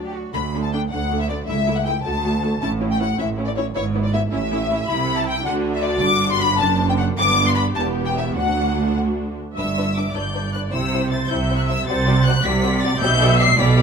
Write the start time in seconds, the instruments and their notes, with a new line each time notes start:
Already playing: double bass section D2, viola section F#3 D4, violin section D4 D5
0.05 cello section G4
0.15 cello section F#4
0.34 cello section D2, double bass section D2, viola section A3 D4, violin section B5
0.55 viola section A3 D4
0.63 violin section A5
0.73 viola section A3 D4, violin section G5
0.91 cello section D2, double bass section D2, viola section A3 D4, violin section F#5
1.11 viola section A3 D4
1.20 violin section E5
1.29 viola section A3 D4, violin section D5
1.47 cello section C#2, double bass section C#2, viola section A3 E4, violin section E5
1.67 viola section A3 E4
1.76 violin section F#5
1.85 viola section A3 E4, violin section G5
2.03 double bass section D2, cello section D2, viola section A3 F#4, violin section A5
2.24 viola section A3 F#4
2.42 viola section A3 F#4
2.61 double bass section A1, cello section A2, viola section C#4 E4, violin section A5
2.80 viola section C#4 E4
2.89 violin section G5
2.98 viola section C#4 E4, violin section F#5
3.18 double bass section A1, cello section A2, viola section C#4 E4, violin section E5
3.38 viola section C#4 E4
3.45 violin section D5
3.55 viola section C#4 E4, violin section C#5
3.75 double bass section G#1, cello section G#2, viola section B3 E4, violin section C#5
3.94 viola section B3 E4
4.03 violin section D5
4.13 viola section B3 E4, violin section E5
4.32 double bass section A1, cello section A2, viola section C#4 E4, violin section E5
4.51 viola section C#4 E4
4.71 viola section C#4 E4
4.87 double bass section C2, cello section C3, viola section E4, violin section B5
5.16 violin section A5
5.26 violin section G5
5.44 double bass section D2, cello section D3, viola section D4 F#4, violin section F#5
5.74 violin section E5
5.82 violin section D5
6.01 double bass section G1, cello section G2, viola section D4, violin section D6
6.30 violin section C6
6.41 violin section B5
6.59 double bass section F#1, cello section F#2, viola section D4, violin section A5
6.89 violin section G5
6.97 violin section F#5
7.17 double bass section G1, cello section G2, viola section B3 D4, violin section D6
7.47 violin section C6
7.55 violin section B5
7.59 violin section B5
7.75 double bass section E1, cello section E2, viola section B3 G4, violin section A5
7.80 violin section A5
8.05 violin section G5
8.15 violin section E5
8.35 double bass section D2, cello section D2, viola section D4 F#4, violin section F#5
9.56 double bass section G1, cello section G2, violin section D4 B4 E6, viola section E5
9.77 violin section D4 B4
9.97 violin section D4 B4 D6
10.14 double bass section G1, cello section G2, violin section D4 B4 G6, viola section D5
10.34 violin section D4 B4
10.53 violin section D4 B4 F#6
10.72 double bass section C2, cello section C3, violin section E4 C5 E6, viola section C5
10.92 violin section E4 C5
11.10 violin section E4 C5 A6
11.28 double bass section C2, cello section C3, violin section E4 C5 G6, viola section E5
11.49 violin section E4 C5
11.57 violin section F#6
11.67 violin section E4 C5 E6
11.86 double bass section C2, cello section C3, violin section F#4 D5 A6, viola section C5
12.07 violin section F#4 D5
12.25 violin section F#4 D5 F#6
12.43 double bass section C2, cello section C3, violin section F#4 D5 B6, viola section D5
12.63 violin section F#4 D5
12.82 violin section F#4 D5 A6
13.00 double bass section B1, cello section B2, violin section G4 D5 G6, viola section E5
13.21 violin section G4 D5
13.38 violin section G4 D5 C7
13.58 double bass section B1, cello section B2, violin section G4 D5 B6, viola section D5
13.77 violin section G4 D5